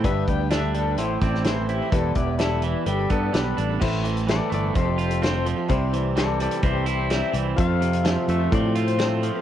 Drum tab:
CC |----------------|----------------|x---------------|----------------|
HH |x-x-x-x-x-x-x-x-|x-x-x-x-x-x-x-x-|--xxx-x-x-xxx-x-|x-x-x-xxx-x-x-x-|
SD |----o------oo---|----o-------o---|----o-------o---|----o-------o---|
BD |o-o-------o-----|o-o-------o-----|o-------o-------|o-------o-------|

CC |----------------|
HH |x-xxx-x-x-xxx-x-|
SD |----o-------o---|
BD |o-------o-------|